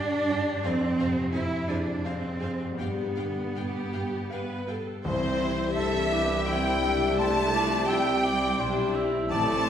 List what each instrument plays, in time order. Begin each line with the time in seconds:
Already playing: grand piano G2 D3 G3 G4 D5, cello section D4
0.28 double bass section G2, grand piano G4, viola section G4, violin section D5 G5
0.47 harp F2
0.52 harp C4
0.56 harp F3
0.60 harp G#4, violin section F5 G#5
0.65 grand piano F2, double bass section F2, cello section C4, viola section C5
0.99 double bass section F2, grand piano C3, viola section C5, violin section F5 G#5
1.32 double bass section F2, grand piano C4, cello section E4, viola section C5, violin section F5 G#5
1.68 double bass section F2, cello section D4, grand piano G#4, viola section C5, violin section F5 G#5
2.04 double bass section F2, cello section C4, viola section C5, grand piano F5, violin section F5 G#5
2.40 double bass section F2, grand piano G#4, viola section C5, violin section F5 G#5
2.60 harp G2
2.64 harp G3
2.69 harp F4
2.74 harp G4
2.78 grand piano G2, double bass section G2, cello section B3, viola section G4, violin section F5 G5
3.16 double bass section G2, grand piano D3, viola section G4, violin section F5 G5
3.54 double bass section G2, grand piano G3, viola section G4, violin section F5 G5
3.93 double bass section G2, grand piano G4, violin section F5 G5
4.30 double bass section G2, viola section B4, grand piano F5, violin section F5 G5
4.67 double bass section G2, grand piano G4, viola section A4, violin section F5 G5
5.04 double bass section C2, grand piano C2, cello section C3, timpani C3, harp E3, french horn section G3 E4, viola section C4 E4, violin section C5, flute C5
5.23 harp G3
5.40 harp E4
5.58 harp G4
5.75 grand piano G2, cello section E3, viola section A3 E4, harp E4, cor anglais A4, violin section E5, flute E5
5.94 harp E5
6.12 viola section B3, cor anglais G4, harp G5
6.30 harp E5
6.47 grand piano G3 E4 E5, cello section G3, viola section C4, cor anglais E4, harp G4, violin section G5, flute G5
6.66 harp E4
6.83 harp G3, viola section D4, cor anglais E5
7.18 cello section A3, harp C4, viola section E4, cor anglais C5, violin section A5, flute A5
7.36 harp G3
7.53 viola section F3, harp E4, cor anglais D5
7.72 harp G4
7.88 cello section G3, viola section C4 G4, harp E4, cor anglais E5, flute G5, violin section G5
8.07 harp E5
8.24 viola section E4, cor anglais D5, harp G5
8.41 harp E5
8.59 double bass section B1, viola section D4, harp G4, cor anglais C5
8.78 harp E4
8.94 harp G3, viola section C4, cor anglais E5
9.13 harp A3
9.30 grand piano A1, double bass section A1, harp A2, french horn section C3 A3, cello section A3, viola section C4 E4, cor anglais D5, flute A5, violin section A5
9.64 harp E4, cor anglais C5